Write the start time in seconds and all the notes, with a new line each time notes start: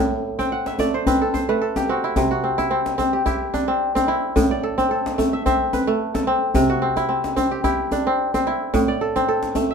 Already playing: A2 C4 E4 F#4 A4
0.11 djembe slap
0.39 C4 G5, djembe tone
0.52 F#5
0.66 E5, djembe slap
0.79 A3 D5, djembe tone
0.94 C5
1.06 C4 B4, djembe bass
1.21 A4, djembe slap
1.34 C5, djembe tone
1.49 A3 B4
1.62 A4
1.76 G4, djembe slap, djembe tone
1.89 C4 F#4, djembe slap
2.04 E4
2.16 C3, djembe tone, djembe bass
2.31 F#4, djembe slap
2.44 C4
2.58 E4, djembe slap, djembe tone
2.71 C4
2.86 djembe slap
2.98 C4, djembe tone
3.13 G4
3.26 E4 G4, djembe slap, djembe bass
3.54 D4, djembe tone
3.68 C4
3.95 C4, djembe slap, djembe tone
4.08 E4, djembe slap
4.36 A2, djembe tone, djembe bass
4.51 D5, djembe slap
4.63 A4
4.78 C4, djembe slap, djembe tone
4.91 A4
5.06 djembe slap
5.18 A3, djembe tone
5.33 E5
5.46 C4 E5, djembe slap, djembe bass
5.73 B4, djembe tone
5.87 A3
6.14 A4, djembe slap, djembe tone
6.27 C4, djembe slap
6.55 C3, djembe tone, djembe bass
6.69 F#4, djembe slap
6.82 C4
6.96 E4, djembe slap, djembe tone
7.09 C4
7.24 djembe slap
7.36 C4, djembe tone
7.51 G4
7.64 E4 G4, djembe slap, djembe bass
7.91 D4, djembe tone
8.07 C4
8.34 C4, djembe slap, djembe tone
8.47 E4, djembe slap
8.74 A2, djembe tone, djembe bass
8.88 D5
9.01 A4, djembe slap
9.16 C4, djembe slap, djembe tone
9.28 A4
9.43 djembe slap
9.55 A3, djembe tone
9.71 E5